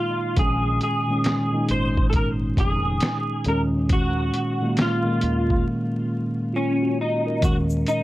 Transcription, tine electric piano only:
0.00 0.38 A#3 medium
0.35 0.88 A#2 medium
0.35 0.88 D#3 medium
0.35 0.89 G#3 medium
0.35 0.89 C#4 medium
1.08 1.39 A#2 medium
1.08 1.39 D#3 medium
1.08 1.40 G#3 medium
1.08 1.40 C#4 medium
1.51 2.85 A#2 medium
1.51 2.86 D#3 medium
1.51 2.86 G#3 medium
1.51 2.87 D#4 medium
3.44 4.33 A#2 medium
3.44 4.34 D#3 medium
3.44 4.34 G#3 medium
3.44 4.35 C#4 medium
4.61 4.92 A#2 medium
4.61 4.92 D#3 medium
4.61 4.93 G#3 medium
4.61 4.93 A#3 medium
5.03 6.37 A#2 medium
5.03 6.38 D#3 medium
5.03 6.38 G#3 medium
5.03 6.39 A#3 medium
6.54 6.80 F4 medium
6.83 7.24 F#4 medium
7.27 7.68 A#4 medium
7.40 7.93 A#2 medium
7.40 7.93 D#3 medium
7.40 7.94 G#3 medium
7.40 7.95 C#4 medium

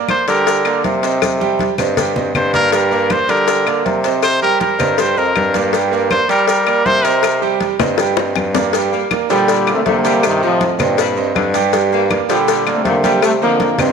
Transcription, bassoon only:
0.28 0.81 D3 loud
0.85 1.73 C3 loud
1.79 2.31 G2 medium
2.35 3.23 G2 loud
3.29 3.82 D3 medium
3.85 4.47 C3 medium
4.79 5.14 G2 medium
5.17 5.35 F2 medium
5.36 6.24 G2 loud
6.30 6.82 G3 loud
6.86 7.74 C3 medium
7.80 8.32 G2 medium
8.36 8.97 G2 loud
9.30 9.82 D3 loud
9.85 10.73 C3 loud
10.79 11.31 G2 medium
11.35 12.23 G2 loud
12.29 12.81 D3 loud
12.84 13.46 C3 loud
13.78 13.92 G2 loud

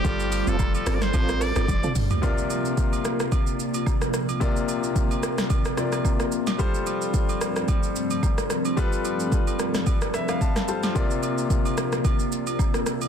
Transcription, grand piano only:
0.04 2.18 G3 medium
0.04 2.19 F4 medium
0.04 2.19 A4 medium
0.04 2.19 D5 medium
2.22 4.37 C3 medium
2.22 4.37 A#3 medium
2.22 4.37 F4 medium
2.22 4.38 D5 medium
4.40 5.74 C3 medium
4.40 5.75 A#3 medium
4.40 5.75 F4 medium
4.40 5.75 D5 medium
5.77 6.59 C3 medium
5.77 6.59 A#3 medium
5.77 6.58 F4 medium
5.77 6.60 D5 medium
6.58 8.73 G3 medium
6.58 8.73 F4 medium
6.58 8.74 A4 medium
6.58 8.74 C5 medium
8.77 10.64 G3 medium
8.77 10.64 F4 medium
8.77 10.65 A4 medium
8.77 10.65 B4 medium
10.14 10.28 E5 medium
10.29 10.40 F5 medium
10.41 10.66 A5 medium
10.68 10.95 G3 medium
10.68 10.95 F4 medium
10.68 10.96 A4 medium
10.68 10.96 C5 medium
10.68 10.94 A5 medium
10.95 13.08 C3 medium
10.95 13.08 A#3 medium
10.95 13.08 F4 medium
10.95 13.08 D5 medium

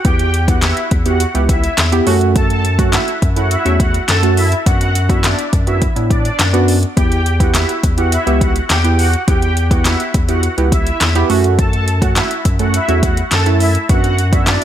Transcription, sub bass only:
0.05 0.73 E2 loud
0.91 1.26 E2 loud
1.35 1.69 C#2 medium
1.78 2.01 E2 loud
2.07 2.98 F#2 loud
3.22 3.56 F#2 loud
3.66 4.00 E2 medium
4.09 4.54 F#2 loud
4.66 5.35 F#2 loud
5.53 5.87 F#2 loud
5.96 6.30 A2 medium
6.39 6.85 F#2 loud
6.97 7.65 E2 loud
7.83 8.18 E2 loud
8.27 8.61 C#2 medium
8.70 9.16 E2 loud
9.28 9.96 E2 loud
10.14 10.49 E2 medium
10.58 10.92 C#2 medium
11.01 11.24 E2 loud
11.30 12.21 F#2 loud
12.45 12.79 F#2 medium
12.89 13.23 E2 medium
13.32 13.77 F#2 loud
13.89 14.58 F#2 loud

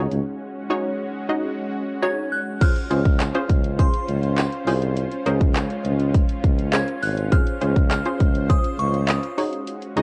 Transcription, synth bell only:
2.02 2.30 G#6 loud
2.32 2.62 F#6 loud
2.61 3.83 F6 loud
3.79 4.63 C6 medium
6.73 7.01 G#6 loud
7.03 7.16 F#6 loud
7.32 7.87 F6 loud
7.91 8.51 F6 loud
8.50 8.80 D#6 loud
8.79 9.09 C#6 medium
9.09 9.50 D#6 medium

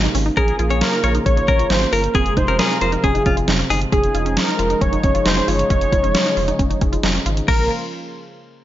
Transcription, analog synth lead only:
0.37 0.78 G#4 loud
0.81 1.23 A#4 loud
1.26 1.72 C#5 loud
1.70 1.94 C5 loud
1.92 2.16 A#4 medium
2.15 2.38 G#4 loud
2.37 2.61 C5 loud
2.59 3.05 A#4 medium
3.04 3.48 G#4 medium
3.92 4.38 G#4 loud
4.37 4.83 A#4 loud
4.81 5.27 C#5 loud
5.26 5.50 C5 loud
5.48 7.26 C#5 loud
7.48 7.69 A#4 medium

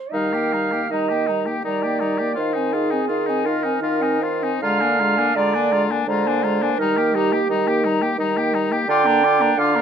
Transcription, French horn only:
0.13 0.36 G3 soft
0.34 0.56 A#3 soft
0.54 0.75 G3 soft
0.73 0.91 A#3 soft
0.92 1.13 G3 soft
1.11 1.31 A#3 soft
1.30 1.49 G3 soft
1.48 1.65 A#3 soft
1.66 1.86 G3 soft
1.85 2.03 A#3 soft
2.02 2.22 G3 soft
2.21 2.38 A#3 soft
2.39 2.59 D#4 soft
2.58 2.76 C4 soft
2.75 2.94 D#4 soft
2.93 3.10 C4 soft
3.11 3.31 D#4 soft
3.29 3.49 C4 soft
3.47 3.66 D#4 soft
3.65 3.82 C4 soft
3.83 4.03 D#4 soft
4.01 4.23 C4 soft
4.22 4.45 D#4 soft
4.43 4.62 C4 soft
4.63 4.83 G#3 soft
4.82 5.01 A#3 soft
5.00 5.20 G#3 soft
5.18 5.36 A#3 soft
5.37 5.57 G#3 soft
5.55 5.74 A#3 soft
5.72 5.92 G#3 soft
5.90 6.07 A#3 soft
6.08 6.27 G#3 soft
6.26 6.46 A#3 soft
6.44 6.63 G#3 soft
6.62 6.79 A#3 soft
6.79 6.99 G3 soft
6.98 7.16 A#3 soft
7.15 7.35 G3 soft
7.33 7.50 A#3 soft
7.50 7.69 G3 soft
7.67 7.87 A#3 soft
7.85 8.04 G3 medium
8.02 8.19 A#3 soft
8.20 8.39 G3 soft
8.38 8.55 A#3 soft
8.54 8.74 G3 soft
8.72 8.89 A#3 soft
8.89 9.08 D4 medium
9.06 9.26 A#3 soft
9.24 9.43 D4 soft
9.42 9.58 A#3 soft
9.59 9.77 D4 soft
9.76 9.82 A#3 soft

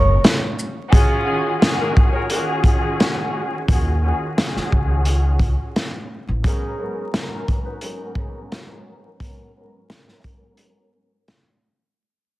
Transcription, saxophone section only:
0.93 1.57 C#4 loud
0.93 1.57 F4 loud
0.93 1.57 G#4 loud
1.80 1.93 A#3 medium
1.80 1.93 F#4 medium
1.80 1.93 A#4 loud
2.13 2.26 G#4 medium
2.13 2.26 A#4 medium
2.13 2.26 C#5 loud
2.30 2.58 A#3 medium
2.30 2.58 F#4 medium
2.30 2.58 A#4 loud
2.65 2.92 C#4 medium
2.65 2.92 F4 medium
2.65 2.92 G#4 medium
2.99 3.27 A#3 medium
2.99 3.27 C#4 loud
2.99 3.27 F#4 loud
6.45 7.10 C#4 loud
6.45 7.10 D#4 loud
6.45 7.10 G#4 loud
7.32 7.45 D#4 medium
7.32 7.45 F#4 medium
7.32 7.45 A#4 medium
7.65 7.78 D#4 medium
7.65 7.78 F#4 medium
7.65 7.78 B4 loud
7.83 8.10 D#4 medium
7.83 8.10 F#4 medium
7.83 8.10 A#4 loud
8.15 8.43 C#4 medium
8.15 8.43 D#4 medium
8.15 8.43 G#4 medium
8.52 8.79 C#4 loud
8.52 8.79 D#4 loud
8.52 8.79 F#4 loud

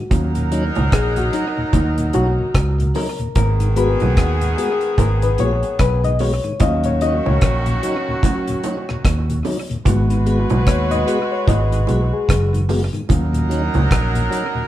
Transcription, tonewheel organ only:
0.35 0.44 D#2 medium
0.35 0.44 A#2 medium
0.52 0.64 F#3 medium
0.52 0.64 C#4 medium
0.52 0.65 D#4 medium
0.76 0.85 D#2 medium
0.76 0.85 A#2 medium
1.16 1.25 D#2 medium
1.16 1.25 A#2 medium
1.33 1.45 F#3 medium
1.33 1.46 C#4 medium
1.33 1.46 D#4 medium
1.57 1.66 D#2 medium
1.57 1.66 A#2 medium
1.97 2.06 D#2 medium
1.97 2.06 A#2 medium
2.14 2.27 F#3 medium
2.14 2.27 C#4 medium
2.14 2.27 D#4 medium
2.38 2.47 D#2 medium
2.38 2.47 A#2 medium
2.79 2.87 D#2 medium
2.79 2.87 A#2 medium
2.94 3.08 F#3 medium
2.94 3.08 C#4 medium
2.94 3.08 D#4 medium
3.19 3.28 D#2 medium
3.19 3.28 A#2 medium
3.60 3.69 G#2 medium
3.60 3.69 D#3 medium
3.76 3.89 G#3 medium
3.76 3.89 B3 medium
3.76 3.89 F#4 medium
4.01 4.09 G#2 medium
4.01 4.09 D#3 medium
4.41 4.50 G#2 medium
4.41 4.50 D#3 medium
4.57 4.70 G#3 medium
4.57 4.70 B3 medium
4.57 4.70 F#4 medium
5.22 5.31 G#2 medium
5.22 5.31 D#3 medium
5.39 5.51 G#3 medium
5.39 5.52 B3 medium
5.39 5.52 F#4 medium
6.04 6.12 G#2 medium
6.04 6.12 D#3 medium
6.20 6.33 G#3 medium
6.20 6.33 B3 medium
6.20 6.33 F#4 medium
6.44 6.53 G#2 medium
6.44 6.53 D#3 medium
6.85 6.94 D#2 medium
6.85 6.94 A#2 medium
7.02 7.14 F#3 medium
7.02 7.14 C#4 medium
7.02 7.15 D#4 medium
7.26 7.34 D#2 medium
7.26 7.35 A#2 medium
7.67 7.75 D#2 medium
7.67 7.75 A#2 medium
7.83 7.95 F#3 medium
7.83 7.96 C#4 medium
7.83 7.96 D#4 medium
8.08 8.16 D#2 medium
8.08 8.16 A#2 medium
8.49 8.57 D#2 medium
8.49 8.56 A#2 medium
8.64 8.76 F#3 medium
8.64 8.76 C#4 medium
8.64 8.77 D#4 medium
8.89 8.97 D#2 medium
8.89 8.97 A#2 medium
9.29 9.37 D#2 medium
9.29 9.37 A#2 medium
9.45 9.57 F#3 medium
9.45 9.58 C#4 medium
9.45 9.58 D#4 medium
9.70 9.78 D#2 medium
9.70 9.78 A#2 medium
10.10 10.19 G#2 medium
10.10 10.18 D#3 medium
10.26 10.39 G#3 medium
10.26 10.39 B3 medium
10.26 10.39 F#4 medium
10.50 10.59 G#2 medium
10.50 10.59 D#3 medium
10.91 10.99 G#2 medium
10.91 10.99 D#3 medium
11.07 11.19 G#3 medium
11.07 11.20 B3 medium
11.07 11.20 F#4 medium
11.72 11.80 G#2 medium
11.72 11.80 D#3 medium
11.88 12.01 G#3 medium
11.88 12.01 B3 medium
11.88 12.01 F#4 medium
12.53 12.61 G#2 medium
12.53 12.61 D#3 medium
12.69 12.82 G#3 medium
12.69 12.82 B3 medium
12.69 12.82 F#4 loud
12.93 13.02 G#2 medium
12.93 13.02 D#3 medium
13.33 13.42 D#2 medium
13.33 13.42 A#2 medium
13.49 13.62 F#3 medium
13.49 13.63 C#4 medium
13.49 13.63 D#4 medium
13.74 13.83 D#2 medium
13.74 13.83 A#2 medium
14.15 14.23 D#2 medium
14.15 14.23 A#2 medium
14.31 14.44 F#3 medium
14.31 14.44 C#4 medium
14.31 14.44 D#4 medium
14.55 14.64 D#2 medium
14.55 14.64 A#2 medium

